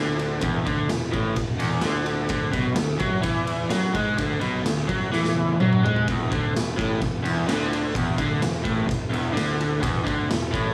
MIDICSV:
0, 0, Header, 1, 4, 480
1, 0, Start_track
1, 0, Tempo, 470219
1, 438, Time_signature, 4, 2, 24, 8
1, 10962, End_track
2, 0, Start_track
2, 0, Title_t, "Overdriven electric guitar"
2, 0, Program_c, 0, 29
2, 0, Note_on_c, 0, 50, 106
2, 416, Note_off_c, 0, 50, 0
2, 422, Note_on_c, 0, 40, 102
2, 662, Note_off_c, 0, 40, 0
2, 663, Note_on_c, 0, 50, 105
2, 902, Note_off_c, 0, 50, 0
2, 911, Note_on_c, 0, 40, 76
2, 1105, Note_off_c, 0, 40, 0
2, 1149, Note_on_c, 0, 45, 94
2, 1379, Note_on_c, 0, 40, 71
2, 1384, Note_off_c, 0, 45, 0
2, 1578, Note_off_c, 0, 40, 0
2, 1624, Note_on_c, 0, 40, 94
2, 1861, Note_off_c, 0, 40, 0
2, 1861, Note_on_c, 0, 50, 107
2, 2333, Note_off_c, 0, 50, 0
2, 2345, Note_on_c, 0, 50, 105
2, 2570, Note_off_c, 0, 50, 0
2, 2575, Note_on_c, 0, 47, 93
2, 2807, Note_off_c, 0, 47, 0
2, 2811, Note_on_c, 0, 50, 77
2, 3013, Note_off_c, 0, 50, 0
2, 3056, Note_on_c, 0, 54, 98
2, 3284, Note_off_c, 0, 54, 0
2, 3288, Note_on_c, 0, 52, 106
2, 3772, Note_off_c, 0, 52, 0
2, 3778, Note_on_c, 0, 54, 105
2, 4015, Note_on_c, 0, 56, 101
2, 4017, Note_off_c, 0, 54, 0
2, 4256, Note_off_c, 0, 56, 0
2, 4260, Note_on_c, 0, 50, 97
2, 4492, Note_off_c, 0, 50, 0
2, 4496, Note_on_c, 0, 47, 100
2, 4737, Note_off_c, 0, 47, 0
2, 4743, Note_on_c, 0, 50, 73
2, 4939, Note_off_c, 0, 50, 0
2, 4980, Note_on_c, 0, 54, 92
2, 5219, Note_off_c, 0, 54, 0
2, 5228, Note_on_c, 0, 52, 96
2, 5704, Note_off_c, 0, 52, 0
2, 5723, Note_on_c, 0, 54, 111
2, 5951, Note_off_c, 0, 54, 0
2, 5953, Note_on_c, 0, 56, 92
2, 6186, Note_off_c, 0, 56, 0
2, 6218, Note_on_c, 0, 40, 93
2, 6439, Note_off_c, 0, 40, 0
2, 6439, Note_on_c, 0, 50, 105
2, 6670, Note_off_c, 0, 50, 0
2, 6672, Note_on_c, 0, 40, 67
2, 6865, Note_off_c, 0, 40, 0
2, 6914, Note_on_c, 0, 45, 92
2, 7148, Note_off_c, 0, 45, 0
2, 7156, Note_on_c, 0, 40, 77
2, 7348, Note_off_c, 0, 40, 0
2, 7383, Note_on_c, 0, 40, 88
2, 7623, Note_off_c, 0, 40, 0
2, 7626, Note_on_c, 0, 50, 112
2, 8105, Note_off_c, 0, 50, 0
2, 8108, Note_on_c, 0, 40, 95
2, 8346, Note_off_c, 0, 40, 0
2, 8355, Note_on_c, 0, 50, 95
2, 8590, Note_off_c, 0, 50, 0
2, 8590, Note_on_c, 0, 40, 73
2, 8786, Note_off_c, 0, 40, 0
2, 8811, Note_on_c, 0, 45, 89
2, 9044, Note_on_c, 0, 40, 69
2, 9058, Note_off_c, 0, 45, 0
2, 9254, Note_off_c, 0, 40, 0
2, 9289, Note_on_c, 0, 40, 84
2, 9520, Note_on_c, 0, 50, 119
2, 9537, Note_off_c, 0, 40, 0
2, 10005, Note_on_c, 0, 40, 110
2, 10013, Note_off_c, 0, 50, 0
2, 10246, Note_on_c, 0, 50, 89
2, 10255, Note_off_c, 0, 40, 0
2, 10496, Note_off_c, 0, 50, 0
2, 10502, Note_on_c, 0, 40, 77
2, 10703, Note_off_c, 0, 40, 0
2, 10739, Note_on_c, 0, 45, 108
2, 10962, Note_off_c, 0, 45, 0
2, 10962, End_track
3, 0, Start_track
3, 0, Title_t, "Picked electric bass"
3, 0, Program_c, 1, 34
3, 0, Note_on_c, 1, 38, 98
3, 418, Note_off_c, 1, 38, 0
3, 445, Note_on_c, 1, 28, 93
3, 664, Note_off_c, 1, 28, 0
3, 683, Note_on_c, 1, 38, 92
3, 902, Note_off_c, 1, 38, 0
3, 948, Note_on_c, 1, 28, 86
3, 1155, Note_off_c, 1, 28, 0
3, 1163, Note_on_c, 1, 33, 94
3, 1382, Note_off_c, 1, 33, 0
3, 1397, Note_on_c, 1, 28, 81
3, 1619, Note_off_c, 1, 28, 0
3, 1651, Note_on_c, 1, 28, 84
3, 1866, Note_off_c, 1, 28, 0
3, 1890, Note_on_c, 1, 38, 96
3, 2328, Note_off_c, 1, 38, 0
3, 2350, Note_on_c, 1, 38, 96
3, 2574, Note_off_c, 1, 38, 0
3, 2596, Note_on_c, 1, 35, 92
3, 2817, Note_off_c, 1, 35, 0
3, 2824, Note_on_c, 1, 38, 81
3, 3051, Note_off_c, 1, 38, 0
3, 3070, Note_on_c, 1, 42, 96
3, 3294, Note_off_c, 1, 42, 0
3, 3312, Note_on_c, 1, 40, 98
3, 3758, Note_off_c, 1, 40, 0
3, 3783, Note_on_c, 1, 42, 91
3, 4010, Note_off_c, 1, 42, 0
3, 4037, Note_on_c, 1, 44, 102
3, 4257, Note_off_c, 1, 44, 0
3, 4268, Note_on_c, 1, 38, 92
3, 4493, Note_off_c, 1, 38, 0
3, 4506, Note_on_c, 1, 35, 92
3, 4721, Note_off_c, 1, 35, 0
3, 4727, Note_on_c, 1, 38, 81
3, 4962, Note_off_c, 1, 38, 0
3, 4999, Note_on_c, 1, 42, 85
3, 5206, Note_off_c, 1, 42, 0
3, 5212, Note_on_c, 1, 40, 97
3, 5668, Note_off_c, 1, 40, 0
3, 5718, Note_on_c, 1, 42, 92
3, 5939, Note_off_c, 1, 42, 0
3, 5956, Note_on_c, 1, 44, 85
3, 6178, Note_off_c, 1, 44, 0
3, 6204, Note_on_c, 1, 28, 96
3, 6423, Note_off_c, 1, 28, 0
3, 6447, Note_on_c, 1, 38, 90
3, 6664, Note_off_c, 1, 38, 0
3, 6696, Note_on_c, 1, 28, 83
3, 6909, Note_off_c, 1, 28, 0
3, 6935, Note_on_c, 1, 33, 84
3, 7149, Note_off_c, 1, 33, 0
3, 7168, Note_on_c, 1, 28, 78
3, 7386, Note_off_c, 1, 28, 0
3, 7397, Note_on_c, 1, 28, 100
3, 7620, Note_off_c, 1, 28, 0
3, 7624, Note_on_c, 1, 38, 95
3, 8077, Note_off_c, 1, 38, 0
3, 8110, Note_on_c, 1, 28, 83
3, 8337, Note_off_c, 1, 28, 0
3, 8354, Note_on_c, 1, 38, 96
3, 8577, Note_off_c, 1, 38, 0
3, 8583, Note_on_c, 1, 28, 70
3, 8814, Note_off_c, 1, 28, 0
3, 8835, Note_on_c, 1, 33, 93
3, 9060, Note_off_c, 1, 33, 0
3, 9070, Note_on_c, 1, 28, 91
3, 9281, Note_off_c, 1, 28, 0
3, 9287, Note_on_c, 1, 28, 90
3, 9525, Note_off_c, 1, 28, 0
3, 9552, Note_on_c, 1, 38, 101
3, 10002, Note_off_c, 1, 38, 0
3, 10034, Note_on_c, 1, 28, 102
3, 10260, Note_off_c, 1, 28, 0
3, 10279, Note_on_c, 1, 38, 95
3, 10503, Note_off_c, 1, 38, 0
3, 10508, Note_on_c, 1, 28, 90
3, 10737, Note_off_c, 1, 28, 0
3, 10760, Note_on_c, 1, 33, 102
3, 10962, Note_off_c, 1, 33, 0
3, 10962, End_track
4, 0, Start_track
4, 0, Title_t, "Drums"
4, 196, Note_on_c, 9, 51, 73
4, 298, Note_off_c, 9, 51, 0
4, 420, Note_on_c, 9, 51, 93
4, 435, Note_on_c, 9, 36, 113
4, 522, Note_off_c, 9, 51, 0
4, 537, Note_off_c, 9, 36, 0
4, 680, Note_on_c, 9, 36, 106
4, 680, Note_on_c, 9, 51, 65
4, 782, Note_off_c, 9, 36, 0
4, 783, Note_off_c, 9, 51, 0
4, 912, Note_on_c, 9, 38, 106
4, 913, Note_on_c, 9, 51, 98
4, 1014, Note_off_c, 9, 38, 0
4, 1015, Note_off_c, 9, 51, 0
4, 1158, Note_on_c, 9, 51, 57
4, 1159, Note_on_c, 9, 36, 92
4, 1260, Note_off_c, 9, 51, 0
4, 1261, Note_off_c, 9, 36, 0
4, 1389, Note_on_c, 9, 51, 80
4, 1396, Note_on_c, 9, 36, 74
4, 1491, Note_off_c, 9, 51, 0
4, 1498, Note_off_c, 9, 36, 0
4, 1629, Note_on_c, 9, 51, 72
4, 1731, Note_off_c, 9, 51, 0
4, 1853, Note_on_c, 9, 38, 110
4, 1854, Note_on_c, 9, 51, 93
4, 1955, Note_off_c, 9, 38, 0
4, 1956, Note_off_c, 9, 51, 0
4, 2101, Note_on_c, 9, 51, 66
4, 2203, Note_off_c, 9, 51, 0
4, 2335, Note_on_c, 9, 51, 85
4, 2348, Note_on_c, 9, 36, 97
4, 2437, Note_off_c, 9, 51, 0
4, 2450, Note_off_c, 9, 36, 0
4, 2585, Note_on_c, 9, 51, 69
4, 2588, Note_on_c, 9, 36, 93
4, 2687, Note_off_c, 9, 51, 0
4, 2690, Note_off_c, 9, 36, 0
4, 2816, Note_on_c, 9, 38, 125
4, 2817, Note_on_c, 9, 51, 93
4, 2918, Note_off_c, 9, 38, 0
4, 2919, Note_off_c, 9, 51, 0
4, 3056, Note_on_c, 9, 51, 60
4, 3067, Note_on_c, 9, 36, 91
4, 3159, Note_off_c, 9, 51, 0
4, 3169, Note_off_c, 9, 36, 0
4, 3300, Note_on_c, 9, 51, 88
4, 3307, Note_on_c, 9, 36, 89
4, 3402, Note_off_c, 9, 51, 0
4, 3409, Note_off_c, 9, 36, 0
4, 3544, Note_on_c, 9, 51, 74
4, 3646, Note_off_c, 9, 51, 0
4, 3782, Note_on_c, 9, 38, 106
4, 3783, Note_on_c, 9, 51, 103
4, 3884, Note_off_c, 9, 38, 0
4, 3885, Note_off_c, 9, 51, 0
4, 4028, Note_on_c, 9, 51, 82
4, 4030, Note_on_c, 9, 36, 98
4, 4130, Note_off_c, 9, 51, 0
4, 4132, Note_off_c, 9, 36, 0
4, 4269, Note_on_c, 9, 51, 100
4, 4273, Note_on_c, 9, 36, 103
4, 4371, Note_off_c, 9, 51, 0
4, 4375, Note_off_c, 9, 36, 0
4, 4503, Note_on_c, 9, 51, 65
4, 4605, Note_off_c, 9, 51, 0
4, 4756, Note_on_c, 9, 38, 122
4, 4757, Note_on_c, 9, 51, 108
4, 4858, Note_off_c, 9, 38, 0
4, 4859, Note_off_c, 9, 51, 0
4, 4991, Note_on_c, 9, 51, 61
4, 4993, Note_on_c, 9, 36, 84
4, 5093, Note_off_c, 9, 51, 0
4, 5095, Note_off_c, 9, 36, 0
4, 5232, Note_on_c, 9, 38, 49
4, 5334, Note_off_c, 9, 38, 0
4, 5348, Note_on_c, 9, 38, 61
4, 5450, Note_off_c, 9, 38, 0
4, 5461, Note_on_c, 9, 48, 73
4, 5563, Note_off_c, 9, 48, 0
4, 5600, Note_on_c, 9, 48, 65
4, 5702, Note_off_c, 9, 48, 0
4, 5720, Note_on_c, 9, 47, 90
4, 5822, Note_off_c, 9, 47, 0
4, 5846, Note_on_c, 9, 45, 77
4, 5948, Note_off_c, 9, 45, 0
4, 5979, Note_on_c, 9, 43, 105
4, 6081, Note_off_c, 9, 43, 0
4, 6087, Note_on_c, 9, 43, 81
4, 6189, Note_off_c, 9, 43, 0
4, 6206, Note_on_c, 9, 51, 81
4, 6207, Note_on_c, 9, 36, 105
4, 6308, Note_off_c, 9, 51, 0
4, 6309, Note_off_c, 9, 36, 0
4, 6449, Note_on_c, 9, 36, 115
4, 6456, Note_on_c, 9, 51, 64
4, 6551, Note_off_c, 9, 36, 0
4, 6558, Note_off_c, 9, 51, 0
4, 6702, Note_on_c, 9, 38, 108
4, 6703, Note_on_c, 9, 51, 95
4, 6804, Note_off_c, 9, 38, 0
4, 6805, Note_off_c, 9, 51, 0
4, 6930, Note_on_c, 9, 36, 99
4, 6948, Note_on_c, 9, 51, 62
4, 7032, Note_off_c, 9, 36, 0
4, 7050, Note_off_c, 9, 51, 0
4, 7161, Note_on_c, 9, 51, 80
4, 7163, Note_on_c, 9, 36, 75
4, 7263, Note_off_c, 9, 51, 0
4, 7265, Note_off_c, 9, 36, 0
4, 7404, Note_on_c, 9, 51, 69
4, 7506, Note_off_c, 9, 51, 0
4, 7644, Note_on_c, 9, 38, 105
4, 7645, Note_on_c, 9, 51, 101
4, 7746, Note_off_c, 9, 38, 0
4, 7747, Note_off_c, 9, 51, 0
4, 7890, Note_on_c, 9, 51, 76
4, 7993, Note_off_c, 9, 51, 0
4, 8116, Note_on_c, 9, 36, 107
4, 8125, Note_on_c, 9, 51, 92
4, 8218, Note_off_c, 9, 36, 0
4, 8227, Note_off_c, 9, 51, 0
4, 8353, Note_on_c, 9, 36, 97
4, 8355, Note_on_c, 9, 51, 71
4, 8455, Note_off_c, 9, 36, 0
4, 8457, Note_off_c, 9, 51, 0
4, 8598, Note_on_c, 9, 38, 108
4, 8599, Note_on_c, 9, 51, 104
4, 8700, Note_off_c, 9, 38, 0
4, 8701, Note_off_c, 9, 51, 0
4, 8831, Note_on_c, 9, 51, 65
4, 8832, Note_on_c, 9, 36, 97
4, 8933, Note_off_c, 9, 51, 0
4, 8934, Note_off_c, 9, 36, 0
4, 9075, Note_on_c, 9, 36, 90
4, 9093, Note_on_c, 9, 51, 82
4, 9177, Note_off_c, 9, 36, 0
4, 9195, Note_off_c, 9, 51, 0
4, 9324, Note_on_c, 9, 51, 66
4, 9426, Note_off_c, 9, 51, 0
4, 9567, Note_on_c, 9, 38, 120
4, 9568, Note_on_c, 9, 51, 99
4, 9669, Note_off_c, 9, 38, 0
4, 9670, Note_off_c, 9, 51, 0
4, 9805, Note_on_c, 9, 51, 69
4, 9907, Note_off_c, 9, 51, 0
4, 10034, Note_on_c, 9, 36, 118
4, 10038, Note_on_c, 9, 51, 97
4, 10136, Note_off_c, 9, 36, 0
4, 10140, Note_off_c, 9, 51, 0
4, 10276, Note_on_c, 9, 36, 106
4, 10286, Note_on_c, 9, 51, 69
4, 10378, Note_off_c, 9, 36, 0
4, 10388, Note_off_c, 9, 51, 0
4, 10521, Note_on_c, 9, 38, 120
4, 10522, Note_on_c, 9, 51, 94
4, 10623, Note_off_c, 9, 38, 0
4, 10624, Note_off_c, 9, 51, 0
4, 10757, Note_on_c, 9, 36, 97
4, 10769, Note_on_c, 9, 51, 65
4, 10859, Note_off_c, 9, 36, 0
4, 10871, Note_off_c, 9, 51, 0
4, 10962, End_track
0, 0, End_of_file